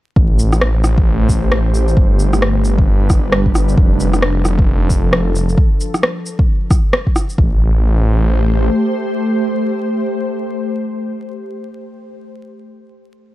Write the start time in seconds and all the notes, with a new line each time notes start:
0.16 A1 A3 G4 C5, kick
0.39 shaker
0.53 cross-stick, shaker
0.61 cross-stick
0.84 cross-stick, shaker
0.98 kick
1.29 kick, shaker
1.52 cross-stick
1.75 shaker
1.88 shaker
1.97 G1 G3 D4 B4, kick
2.19 shaker
2.33 cross-stick, shaker
2.42 cross-stick
2.65 shaker
2.78 kick
3.10 kick, cross-stick, shaker
3.32 cross-stick
3.46 kick
3.55 cross-stick, shaker
3.69 shaker
3.77 F1 F3 A4, kick
4.00 shaker
4.13 cross-stick, shaker
4.22 cross-stick
4.45 cross-stick, shaker
4.59 kick
4.90 kick, shaker
5.13 cross-stick
5.35 shaker
5.49 shaker
5.58 kick
5.81 shaker
5.94 cross-stick, shaker
6.03 cross-stick
6.26 shaker
6.39 kick
6.71 kick, cross-stick, shaker
6.93 cross-stick
7.07 kick
7.16 cross-stick, shaker
7.30 shaker
7.38 A1 A3 G4 C5, kick